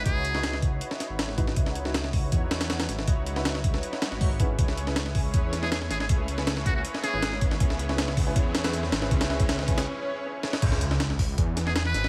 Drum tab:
CC |----------------|----------------|----------------|----------------|
HH |x-x-x-x-x-x-x-x-|x-x-x-o-x-xxxxx-|x-x-x-x-x-x-o-x-|x-x-x-o-x-x-x-x-|
SD |---ooo---oo-oo-o|-o-ooo----oooooo|---ooo-o-ooo----|-o-ooo----oooooo|
BD |o-----o-------o-|o-----o-o-------|o-----o-----o-o-|o-----o-o-------|

CC |----------------|----------------|----------------|x---------------|
HH |x-x-x-x-x-x-x-x-|x-x-x-o-x-xxx-x-|xx-xx-xx--------|x-x-x-o-x-x-x-x-|
SD |---ooo---oo-oo-o|-o-ooo----oooooo|-oo-oo-o------oo|-o-ooo----oooooo|
BD |o-----o-------o-|o-----o-o-------|o--o--o---------|o-----o-o-------|